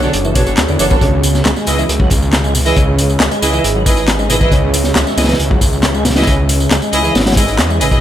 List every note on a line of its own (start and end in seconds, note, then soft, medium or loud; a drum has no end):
0.00 0.13 D3 medium
0.00 0.97 B3 medium
0.00 0.97 D4 medium
0.00 0.97 F#4 medium
0.00 0.98 G#4 medium
0.00 snare soft
0.00 tambourine soft
0.13 0.57 F#1 medium
0.13 closed hi-hat medium
0.13 tambourine soft
0.24 0.34 E3 medium
0.24 tambourine soft
0.35 0.46 B2 medium
0.35 0.49 D4 medium
0.35 0.49 F#4 medium
0.35 0.49 A4 medium
0.35 0.49 C#5 medium
0.35 kick medium
0.35 closed hi-hat medium
0.35 open hi-hat medium
0.35 tambourine medium
0.46 closed hi-hat soft
0.46 tambourine soft
0.57 0.66 D2 loud
0.57 snare loud
0.57 clap loud
0.57 closed hi-hat medium
0.57 tambourine soft
0.68 0.77 E2 medium
0.68 0.79 D3 medium
0.68 tambourine soft
0.79 0.97 F#1 medium
0.79 0.90 E3 medium
0.79 0.88 D4 loud
0.79 0.88 F#4 medium
0.79 0.88 A4 medium
0.79 0.88 C#5 loud
0.79 closed hi-hat medium
0.79 open hi-hat medium
0.79 tambourine medium
0.90 0.96 B3 loud
0.90 0.99 D4 medium
0.90 0.99 F#4 medium
0.90 0.99 A4 medium
0.90 0.99 C#5 loud
0.90 kick loud
0.90 tambourine soft
1.01 1.42 C#2 loud
1.01 1.44 C#3 medium
1.01 7.98 C#4 medium
1.01 7.98 G#4 medium
1.01 4.48 B4 medium
1.01 7.98 E5 medium
1.01 kick loud
1.01 closed hi-hat medium
1.01 tambourine soft
1.23 closed hi-hat medium
1.23 open hi-hat medium
1.23 tambourine medium
1.34 snare soft
1.34 tambourine soft
1.45 1.54 C#2 medium
1.45 1.51 G#3 medium
1.45 snare loud
1.45 clap loud
1.45 closed hi-hat medium
1.45 tambourine soft
1.56 1.77 G#3 medium
1.56 snare soft
1.56 tambourine soft
1.67 1.84 C#2 loud
1.67 1.75 E4 medium
1.67 1.75 G#4 medium
1.67 1.75 B4 medium
1.67 1.75 D#5 medium
1.67 closed hi-hat medium
1.67 open hi-hat medium
1.67 tambourine medium
1.79 1.89 E3 medium
1.79 tambourine soft
1.89 2.73 C#2 loud
1.89 closed hi-hat medium
1.89 tambourine soft
2.00 2.10 F#3 medium
2.00 kick loud
2.10 kick loud
2.10 closed hi-hat medium
2.10 open hi-hat medium
2.10 tambourine medium
2.22 tambourine soft
2.33 snare loud
2.33 clap loud
2.33 closed hi-hat medium
2.33 tambourine soft
2.44 2.54 G#3 medium
2.44 tambourine soft
2.55 2.61 B2 medium
2.55 open hi-hat medium
2.55 tambourine medium
2.66 2.76 E3 medium
2.66 2.74 E4 medium
2.66 2.74 G#4 medium
2.66 2.74 B4 medium
2.66 2.74 D#5 loud
2.66 tambourine soft
2.77 3.17 C#2 loud
2.77 3.19 C#3 medium
2.77 kick loud
2.77 closed hi-hat medium
2.77 tambourine soft
2.99 closed hi-hat medium
2.99 open hi-hat medium
2.99 tambourine medium
3.10 tambourine soft
3.20 3.29 C#2 medium
3.20 3.26 G#3 medium
3.20 snare loud
3.20 clap loud
3.20 closed hi-hat loud
3.20 tambourine soft
3.31 3.52 G#3 medium
3.31 closed hi-hat soft
3.31 tambourine soft
3.42 3.60 C#2 loud
3.42 3.56 E4 loud
3.42 3.56 G#4 medium
3.42 3.56 B4 medium
3.42 3.56 D#5 loud
3.42 closed hi-hat medium
3.42 open hi-hat medium
3.42 tambourine medium
3.53 3.64 E3 medium
3.53 tambourine soft
3.64 4.48 G#1 medium
3.64 closed hi-hat loud
3.64 tambourine soft
3.75 3.85 F#3 medium
3.86 3.99 E4 medium
3.86 3.99 G#4 medium
3.86 3.99 B4 medium
3.86 3.99 D#5 medium
3.86 kick loud
3.86 closed hi-hat medium
3.86 open hi-hat medium
3.86 tambourine medium
3.97 closed hi-hat soft
3.97 tambourine soft
4.07 snare loud
4.07 clap loud
4.07 closed hi-hat medium
4.07 tambourine soft
4.19 4.29 G#3 medium
4.19 tambourine soft
4.30 4.36 B2 medium
4.30 4.38 E4 loud
4.30 4.38 G#4 medium
4.30 4.38 B4 medium
4.30 4.38 D#5 loud
4.30 closed hi-hat medium
4.30 open hi-hat medium
4.30 tambourine medium
4.41 4.51 E3 medium
4.41 4.49 E4 medium
4.41 4.49 G#4 medium
4.41 4.49 B4 medium
4.41 4.49 D#5 loud
4.41 kick medium
4.41 tambourine soft
4.52 4.92 C#2 loud
4.52 4.95 C#3 medium
4.52 7.99 C#5 medium
4.52 kick loud
4.52 closed hi-hat medium
4.52 tambourine soft
4.74 closed hi-hat medium
4.74 open hi-hat medium
4.74 tambourine medium
4.84 snare soft
4.84 tambourine soft
4.96 5.04 C#2 medium
4.96 5.02 G#3 medium
4.96 snare loud
4.96 clap loud
4.96 closed hi-hat medium
4.96 tambourine soft
5.07 5.27 G#3 medium
5.07 snare soft
5.07 tambourine soft
5.17 5.35 C#2 loud
5.17 5.26 E4 medium
5.17 5.26 G#4 medium
5.17 5.26 B4 medium
5.17 5.26 D#5 loud
5.17 snare medium
5.17 closed hi-hat medium
5.17 open hi-hat medium
5.17 tambourine medium
5.24 snare medium
5.24 closed hi-hat medium
5.29 5.39 E3 medium
5.29 snare medium
5.29 closed hi-hat medium
5.29 tambourine soft
5.33 snare medium
5.33 closed hi-hat medium
5.39 6.23 C#2 loud
5.39 closed hi-hat medium
5.39 tambourine soft
5.51 5.60 F#3 medium
5.51 kick loud
5.61 kick loud
5.61 closed hi-hat medium
5.61 open hi-hat medium
5.61 tambourine medium
5.73 tambourine soft
5.83 snare loud
5.83 clap loud
5.83 closed hi-hat medium
5.83 tambourine soft
5.94 6.04 G#3 medium
5.94 tambourine soft
6.05 6.11 B2 medium
6.05 snare medium
6.05 closed hi-hat medium
6.05 open hi-hat medium
6.05 tambourine medium
6.10 snare medium
6.10 closed hi-hat medium
6.16 6.27 E3 medium
6.16 6.24 E4 medium
6.16 6.25 G#4 medium
6.16 6.24 B4 medium
6.16 6.25 D#5 loud
6.16 snare medium
6.16 closed hi-hat medium
6.16 tambourine soft
6.22 snare loud
6.22 closed hi-hat medium
6.27 6.67 C#2 loud
6.27 6.70 C#3 medium
6.27 kick loud
6.27 closed hi-hat medium
6.27 tambourine soft
6.49 closed hi-hat medium
6.49 open hi-hat medium
6.49 tambourine medium
6.60 tambourine soft
6.71 6.80 C#2 medium
6.71 6.77 G#3 medium
6.71 snare loud
6.71 clap loud
6.71 closed hi-hat medium
6.71 tambourine soft
6.82 7.03 G#3 medium
6.82 closed hi-hat soft
6.82 tambourine soft
6.93 7.10 C#2 loud
6.93 7.06 E4 loud
6.93 7.06 G#4 medium
6.93 7.06 B4 medium
6.93 7.06 D#5 loud
6.93 closed hi-hat medium
6.93 open hi-hat medium
6.93 tambourine medium
7.04 7.14 E3 medium
7.04 tambourine soft
7.15 7.60 G#1 medium
7.15 snare medium
7.15 closed hi-hat medium
7.15 tambourine soft
7.20 snare medium
7.20 closed hi-hat medium
7.26 7.35 F#3 medium
7.26 snare medium
7.26 closed hi-hat medium
7.26 tambourine soft
7.32 snare medium
7.32 closed hi-hat medium
7.37 7.46 G#3 medium
7.37 7.50 E4 medium
7.37 7.50 G#4 medium
7.37 7.50 B4 medium
7.37 7.50 D#5 medium
7.37 kick medium
7.37 closed hi-hat medium
7.37 open hi-hat medium
7.37 tambourine medium
7.48 closed hi-hat soft
7.48 tambourine soft
7.59 7.82 E2 loud
7.59 snare loud
7.59 clap loud
7.59 closed hi-hat medium
7.59 tambourine soft
7.70 7.80 G#3 medium
7.70 tambourine soft
7.80 7.98 G#1 medium
7.80 7.90 C#3 medium
7.80 7.89 E4 loud
7.80 7.89 G#4 medium
7.80 7.89 B4 medium
7.80 7.89 D#5 loud
7.80 closed hi-hat medium
7.80 open hi-hat medium
7.80 tambourine medium
7.91 8.01 B2 medium
7.91 8.00 E4 medium
7.91 8.00 G#4 medium
7.91 8.00 B4 medium
7.91 8.00 D#5 loud
7.91 kick medium
7.91 tambourine soft